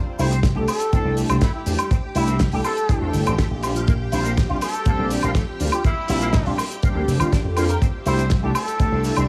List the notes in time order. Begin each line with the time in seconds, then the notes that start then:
Already playing: G4 G5
0.19 C2 A3 D4 E4 G4 C5, open hi-hat, cabasa
0.31 C4, closed hi-hat, cabasa
0.43 kick, snare, closed hi-hat, cabasa
0.55 C2 A3 D4 E4 G4 A4
0.68 C4 A4, open hi-hat, cabasa, high woodblock
0.80 closed hi-hat, cabasa
0.92 A3 C4 D4 E4 A4, muted slap bass stroke, kick, closed hi-hat, cabasa
1.05 C2 C4
1.17 open hi-hat, cabasa
1.29 C2 A3 C4 D4 E4 G4, closed hi-hat, cabasa, high woodblock
1.41 A3 E4, kick, snare, closed hi-hat, cabasa
1.54 E4
1.66 E2 A3 C4 D4 E4 G4, open hi-hat, cabasa
1.79 G3, closed hi-hat, cabasa, high woodblock
1.91 C4, kick, closed hi-hat, cabasa
2.15 C2 A3 D4 E4 G4, open hi-hat, cabasa
2.27 C4, closed hi-hat, cabasa
2.39 kick, snare, closed hi-hat, cabasa
2.52 C2 A3 D4 E4 G4 A4, open hi-hat
2.64 C4 A4, open hi-hat, cabasa, high woodblock
2.77 closed hi-hat, cabasa
2.89 A3 C4 D4 E4 A4, kick, closed hi-hat, cabasa
3.01 E2 C4
3.13 G1, open hi-hat, cabasa
3.26 A1 A3 C4 D4 E4 G4, closed hi-hat, cabasa, high woodblock
3.38 A3, kick, snare, closed hi-hat, cabasa
3.51 A#1
3.63 G3 A#3 C4 D4 F4, open hi-hat, cabasa, high woodblock
3.75 F3, closed hi-hat, cabasa
3.87 A#3, kick, closed hi-hat, cabasa
4.12 A#1 G3 C4 D4 E4 F4 C5, open hi-hat, cabasa
4.25 A#3, closed hi-hat, cabasa
4.37 kick, snare, closed hi-hat, cabasa
4.49 A#1 G3 C4 D4 F4 G4
4.61 A#3 A4, open hi-hat, cabasa, high woodblock
4.73 closed hi-hat, cabasa
4.85 G3 A#3 C4 D4 G4 A4, muted slap bass stroke, kick, closed hi-hat, cabasa
4.99 A#1 A#3
5.10 open hi-hat, cabasa
5.23 A#1 G3 A#3 C4 D4 F4, closed hi-hat, cabasa, high woodblock
5.35 A3, kick, snare, closed hi-hat, cabasa
5.59 D2 G3 A#3 C4 D4 F4, open hi-hat, cabasa
5.72 F3 G4, closed hi-hat, cabasa, high woodblock
5.84 A#3 E4, kick, closed hi-hat, cabasa
6.08 A#1 G3 C4 D4 E4 F4, open hi-hat, cabasa
6.21 A#3, closed hi-hat, cabasa
6.33 kick, snare, closed hi-hat, cabasa
6.46 A#1 G3 C4 D4 F4 G4, open hi-hat
6.58 A#3, open hi-hat, cabasa, high woodblock
6.71 closed hi-hat, cabasa
6.82 G3 A#3 C4 D4 G4, kick, closed hi-hat, cabasa
6.95 D2 A#3
7.07 F1, open hi-hat, cabasa
7.19 G1 G3 A#3 C4 D4 F4, closed hi-hat, cabasa, high woodblock
7.32 D4, kick, snare, closed hi-hat, cabasa
7.44 F2
7.56 G3 A#3 C4 D4 F4, open hi-hat, cabasa, high woodblock
7.69 A#4, closed hi-hat, cabasa
7.81 C4 G4 E5, kick, closed hi-hat, cabasa
8.06 C2 A3 D4 E4 G4 C5, open hi-hat, cabasa
8.18 C4, closed hi-hat, cabasa
8.30 kick, snare, closed hi-hat, cabasa
8.42 C2 A3 D4 E4 G4 A4
8.55 C4 A4, open hi-hat, cabasa, high woodblock
8.68 closed hi-hat, cabasa
8.80 A3 C4 D4 E4 A4, muted slap bass stroke, kick, closed hi-hat, cabasa
8.92 C2 C4
9.04 open hi-hat, cabasa
9.16 C2 A3 C4 D4 E4 G4, closed hi-hat, cabasa, high woodblock